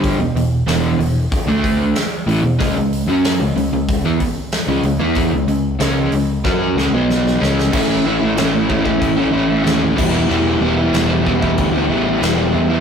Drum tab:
CC |----------------|----------------|----------------|x---x---x---x-x-|
HH |o-o-o-o-o-o-o-o-|o-o-o-o-o-o-o-o-|o-o-o-o---------|----------------|
SD |----o-------o---|----o-------o---|----o---o-o-oooo|----o-------o---|
BD |o-------o-o-----|o-------o-o-----|o-------o-------|o-----ooo-----o-|

CC |x---x---x---x---|
HH |----------------|
SD |----o-------o---|
BD |------ooo-------|